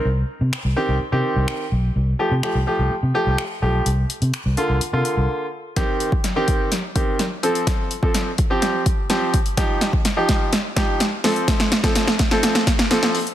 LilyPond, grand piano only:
\new Staff \with { instrumentName = "Grand piano" } { \time 4/4 \key f \mixolydian \tempo 4 = 126 r4. <ees c' g'>8 r16 <ees c' g'>4 r8. | r8 <f a g'>16 r16 <f a g'>16 r16 <f a g'>8 r8 <f a g'>8 r8 <f a g'>8 | r4. <d bes f'>8 r16 <d bes f'>4 r8. | <ees c' g'>8. r8 <ees c' g'>8. r8 <ees c' g'>8 r8 <f c' a'>8~ |
<f c' a'>8 r16 <f c' a'>8 r8 <f c' g'>8. r8 <f c' g'>8 r8 | <f ees' g'>8. r8 <f ees' g'>8. r8 <f ees' g'>8 r8 <f c' a'>8~ | <f c' a'>8 r16 <f c' a'>8 r8 <f c' a'>8. r8 <f c' a'>8 r8 | }